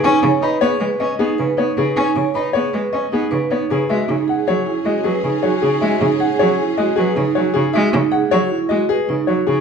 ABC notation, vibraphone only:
X:1
M:5/4
L:1/8
Q:1/4=156
K:G#m
V:1 name="Vibraphone"
D c B G B d D B D B | D c B G B d D B D B | [K:E] F D G F E F B D F D | F D G F E F B D F D |
F D G F E F B D F D |]